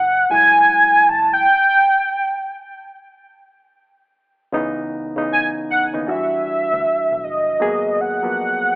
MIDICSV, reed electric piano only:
0, 0, Header, 1, 2, 480
1, 0, Start_track
1, 0, Key_signature, 4, "minor"
1, 0, Tempo, 769231
1, 907, Time_signature, 4, 2, 24, 8
1, 5462, End_track
2, 0, Start_track
2, 0, Title_t, "Reed electric piano"
2, 0, Program_c, 0, 4
2, 83, Control_c, 0, 64, 127
2, 185, Note_on_c, 0, 45, 68
2, 187, Note_on_c, 0, 54, 63
2, 193, Note_on_c, 0, 56, 60
2, 195, Note_on_c, 0, 64, 78
2, 778, Note_off_c, 0, 45, 0
2, 779, Note_off_c, 0, 54, 0
2, 782, Note_off_c, 0, 56, 0
2, 783, Note_off_c, 0, 64, 0
2, 915, Control_c, 0, 64, 0
2, 2823, Note_on_c, 0, 49, 103
2, 2829, Note_on_c, 0, 52, 95
2, 2830, Note_on_c, 0, 59, 96
2, 2834, Note_on_c, 0, 63, 108
2, 2951, Control_c, 0, 64, 127
2, 3121, Note_off_c, 0, 49, 0
2, 3124, Note_off_c, 0, 52, 0
2, 3125, Note_off_c, 0, 59, 0
2, 3126, Note_off_c, 0, 63, 0
2, 3222, Note_on_c, 0, 49, 71
2, 3226, Note_on_c, 0, 52, 62
2, 3230, Note_on_c, 0, 59, 62
2, 3232, Note_on_c, 0, 63, 81
2, 3571, Note_off_c, 0, 49, 0
2, 3573, Note_off_c, 0, 52, 0
2, 3575, Note_off_c, 0, 59, 0
2, 3576, Note_off_c, 0, 63, 0
2, 3701, Note_on_c, 0, 49, 67
2, 3704, Note_on_c, 0, 52, 61
2, 3707, Note_on_c, 0, 59, 62
2, 3710, Note_on_c, 0, 63, 71
2, 3777, Note_off_c, 0, 52, 0
2, 3784, Note_on_c, 0, 52, 61
2, 3787, Note_on_c, 0, 54, 49
2, 3788, Note_off_c, 0, 49, 0
2, 3789, Note_on_c, 0, 62, 57
2, 3790, Note_off_c, 0, 59, 0
2, 3792, Note_off_c, 0, 63, 0
2, 3793, Note_on_c, 0, 66, 75
2, 3794, Control_c, 0, 64, 0
2, 3826, Note_on_c, 0, 55, 57
2, 3839, Note_off_c, 0, 54, 0
2, 3922, Control_c, 0, 64, 127
2, 4567, Note_off_c, 0, 52, 0
2, 4570, Note_off_c, 0, 62, 0
2, 4572, Note_off_c, 0, 66, 0
2, 4588, Note_off_c, 0, 55, 0
2, 4742, Note_on_c, 0, 54, 83
2, 4749, Note_on_c, 0, 58, 84
2, 4750, Note_on_c, 0, 59, 78
2, 4754, Note_on_c, 0, 68, 104
2, 4755, Control_c, 0, 64, 0
2, 4848, Control_c, 0, 64, 127
2, 5040, Note_off_c, 0, 54, 0
2, 5044, Note_off_c, 0, 58, 0
2, 5045, Note_off_c, 0, 59, 0
2, 5047, Note_off_c, 0, 68, 0
2, 5135, Note_on_c, 0, 54, 66
2, 5139, Note_on_c, 0, 58, 66
2, 5144, Note_on_c, 0, 59, 65
2, 5146, Note_on_c, 0, 53, 78
2, 5462, Note_off_c, 0, 53, 0
2, 5462, Note_off_c, 0, 54, 0
2, 5462, Note_off_c, 0, 58, 0
2, 5462, Note_off_c, 0, 59, 0
2, 5462, End_track
0, 0, End_of_file